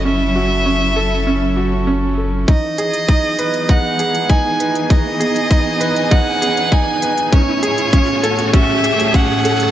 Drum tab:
HH |----------------|x-xxx-xxx-xxx-xx|x-xxx-xxx-xxx-xx|x-xxx-xxx-xxx-xx|
BD |----------------|o---o---o---o---|o---o---o---o---|o---o---o---o---|